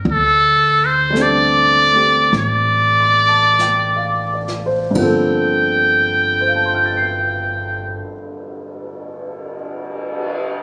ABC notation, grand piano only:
X:1
M:4/4
L:1/16
Q:"Swing" 1/4=42
K:Gm
V:1 name="Grand piano"
z8 z2 c' a g f d c | z4 [cfac'f'a'c'']12 |]
V:2 name="Grand piano"
z4 [G,A,CDA]2 [A,CG]8- [A,CG]2 | [G,,D,F,B,CA]16 |]